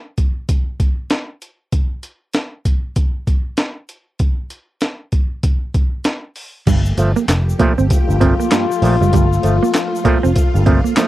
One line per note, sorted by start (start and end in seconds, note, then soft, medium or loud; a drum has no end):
0.18 kick medium
0.18 closed hi-hat medium
0.49 kick medium
0.49 closed hi-hat medium
0.80 kick medium
0.80 closed hi-hat medium
1.10 snare loud
1.10 closed hi-hat medium
1.42 closed hi-hat medium
1.72 kick medium
1.72 closed hi-hat medium
2.03 closed hi-hat medium
2.33 snare loud
2.33 closed hi-hat medium
2.65 kick medium
2.65 closed hi-hat medium
2.96 kick medium
2.96 closed hi-hat medium
3.27 kick medium
3.27 closed hi-hat medium
3.57 snare loud
3.57 closed hi-hat medium
3.89 closed hi-hat medium
4.19 kick loud
4.19 closed hi-hat medium
4.50 closed hi-hat medium
4.81 snare medium
4.81 closed hi-hat medium
5.12 kick medium
5.12 closed hi-hat medium
5.43 kick medium
5.43 closed hi-hat medium
5.74 kick medium
5.74 closed hi-hat medium
6.04 snare loud
6.04 closed hi-hat medium
6.36 open hi-hat medium
6.66 6.91 G1 loud
6.66 6.81 G2 medium
6.66 11.08 F3 medium
6.66 6.81 G3 medium
6.66 11.08 A3 medium
6.66 11.08 A#3 medium
6.66 9.10 G4 medium
6.66 kick loud
6.66 closed hi-hat medium
6.66 crash loud
6.66 shaker medium
6.85 shaker medium
6.98 7.12 G1 loud
6.98 7.11 F3 medium
6.98 7.12 A3 medium
6.98 muted clean electric guitar stroke soft
6.98 closed hi-hat medium
6.98 shaker medium
7.16 7.25 A#3 medium
7.16 shaker medium
7.28 7.53 F1 medium
7.28 muted clean electric guitar stroke soft
7.28 snare loud
7.28 clap medium
7.28 closed hi-hat medium
7.28 shaker medium
7.49 shaker medium
7.59 7.73 A#2 medium
7.59 7.73 F3 medium
7.59 7.73 A3 medium
7.59 7.73 A#3 medium
7.59 kick medium
7.59 closed hi-hat medium
7.78 7.88 G1 medium
7.78 7.87 C4 medium
7.78 shaker soft
7.90 7.97 F3 soft
7.90 7.98 A3 soft
7.90 11.08 F4 loud
7.90 muted picked electric bass stroke soft
7.90 muted clean electric guitar stroke soft
7.90 kick loud
7.90 closed hi-hat loud
7.90 shaker medium
8.08 8.33 G1 medium
8.08 8.17 G2 medium
8.08 shaker medium
8.20 8.34 A#2 medium
8.20 8.34 F3 medium
8.20 8.34 A3 medium
8.20 8.34 C4 medium
8.20 kick medium
8.20 closed hi-hat medium
8.40 8.49 A#3 medium
8.40 shaker medium
8.51 8.65 G2 medium
8.51 8.65 A#3 medium
8.51 snare loud
8.51 clap loud
8.51 closed hi-hat loud
8.51 shaker medium
8.70 muted clean electric guitar stroke soft
8.70 shaker medium
8.82 8.97 A#1 loud
8.82 8.96 A#2 medium
8.82 8.96 F3 medium
8.82 8.96 A3 medium
8.82 open hi-hat medium
8.82 shaker medium
9.01 9.11 F#1 loud
9.01 9.06 F3 soft
9.01 9.10 G3 medium
9.01 9.06 A3 soft
9.01 shaker soft
9.13 9.37 G1 loud
9.13 9.26 G2 medium
9.13 9.27 G3 medium
9.13 11.08 F4 medium
9.13 kick loud
9.13 closed hi-hat medium
9.13 shaker medium
9.33 shaker medium
9.43 9.59 G1 medium
9.43 9.57 F3 medium
9.43 9.57 A3 medium
9.43 muted clean electric guitar stroke soft
9.43 closed hi-hat medium
9.43 shaker medium
9.63 9.72 A#3 medium
9.63 shaker medium
9.74 muted clean electric guitar stroke medium
9.74 snare loud
9.74 clap medium
9.74 closed hi-hat medium
9.74 shaker medium
9.96 shaker medium
10.04 10.18 A#2 medium
10.04 10.19 F3 medium
10.04 10.19 A3 medium
10.04 10.19 A#3 medium
10.04 muted picked electric bass stroke medium
10.04 kick medium
10.04 closed hi-hat medium
10.23 10.34 F1 medium
10.23 10.33 C4 medium
10.23 shaker soft
10.35 10.43 F3 soft
10.35 10.43 A3 soft
10.35 muted picked electric bass stroke soft
10.35 muted clean electric guitar stroke soft
10.35 kick loud
10.35 closed hi-hat loud
10.35 shaker medium
10.54 10.79 G1 medium
10.54 10.63 G2 medium
10.54 shaker medium
10.66 10.80 A#2 medium
10.66 10.80 F3 medium
10.66 10.80 A3 medium
10.66 10.80 C4 medium
10.66 kick loud
10.66 closed hi-hat medium
10.84 10.94 A#3 medium
10.84 shaker medium
10.96 11.08 F3 medium
10.96 11.08 A3 medium
10.96 11.08 A#3 medium
10.96 snare loud
10.96 clap loud
10.96 closed hi-hat medium
10.96 shaker medium